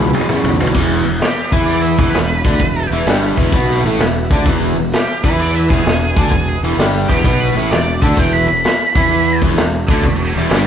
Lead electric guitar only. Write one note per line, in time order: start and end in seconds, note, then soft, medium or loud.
1.22 1.52 G4 medium
1.52 1.65 B4 medium
1.65 1.81 D5 medium
1.82 1.97 E5 medium
1.99 2.89 B4 medium
4.95 5.24 G4 medium
5.25 5.40 B4 medium
5.40 5.55 D5 medium
5.55 5.70 E5 medium
5.69 6.60 G#4 medium
7.08 7.39 G4 medium
7.40 7.70 B4 medium
7.71 8.01 D5 medium
8.02 8.17 E5 medium
8.19 8.33 G5 medium
8.33 8.47 B5 medium
8.48 9.39 B5 medium
9.87 10.03 E4 medium
9.87 10.03 C#5 loud
10.04 10.16 E4 medium
10.04 10.17 C#5 medium
10.17 10.34 E4 medium
10.17 10.35 C#5 medium
10.34 10.49 D4 medium
10.34 10.49 B4 medium
10.50 10.64 D4 medium
10.50 10.65 B4 medium